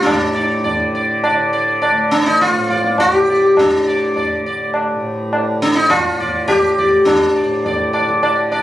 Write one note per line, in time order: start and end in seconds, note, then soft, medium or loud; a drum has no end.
0.00 1.91 D2 medium
0.00 0.67 D3 medium
0.00 0.88 D4 medium
0.04 2.50 A2 medium
0.04 0.32 D5 soft
0.04 tabla na medium
0.04 tabla ge medium
0.34 0.62 D5 soft
0.64 1.30 D3 medium
0.64 0.92 D5 soft
0.64 tabla tin medium
0.64 tabla ge medium
0.95 1.22 D5 soft
1.24 1.51 D5 soft
1.24 tabla na medium
1.30 3.13 D3 medium
1.53 1.80 D5 soft
1.82 2.09 D5 soft
1.82 tabla na medium
1.92 4.35 D2 medium
2.11 2.26 D4 medium
2.11 tabla na medium
2.26 2.41 D#4 medium
2.41 2.99 F4 medium
2.41 tabla te medium
2.51 4.94 A2 medium
2.55 tabla te medium
2.70 2.97 D5 soft
2.70 tabla ke medium
2.84 tabla te medium
2.98 3.15 F#4 medium
2.98 tabla na medium
2.98 tabla ge medium
3.13 3.72 D3 medium
3.13 3.60 G4 medium
3.28 3.56 D5 soft
3.28 tabla te medium
3.57 4.42 D4 medium
3.57 tabla na medium
3.57 tabla ge medium
3.72 5.56 D3 medium
3.87 4.14 D5 soft
4.16 4.43 D5 soft
4.16 tabla tin medium
4.16 tabla ge medium
4.35 6.77 D2 medium
4.46 4.73 D5 soft
4.74 tabla na medium
4.94 7.38 A2 medium
5.33 tabla na medium
5.56 6.16 D3 medium
5.62 5.75 D4 medium
5.76 5.89 D#4 medium
5.90 6.47 F4 medium
5.90 tabla na medium
5.90 tabla ge medium
6.16 7.98 D3 medium
6.16 6.47 D5 soft
6.16 tabla ge medium
6.48 7.08 G4 medium
6.48 tabla na medium
6.48 tabla ge medium
6.77 8.62 D2 medium
6.77 7.05 D5 soft
6.77 tabla ge medium
7.05 7.89 D4 medium
7.05 tabla na loud
7.05 tabla ge medium
7.36 8.62 A2 medium
7.36 7.63 D5 soft
7.65 7.92 D5 soft
7.65 tabla tin medium
7.65 tabla ge medium
7.93 8.20 D5 soft
7.93 tabla na medium
7.98 8.58 D3 medium
8.09 tabla ke medium
8.23 8.50 D5 soft
8.23 tabla na medium
8.52 8.62 D5 soft
8.52 tabla na medium
8.58 8.62 D3 medium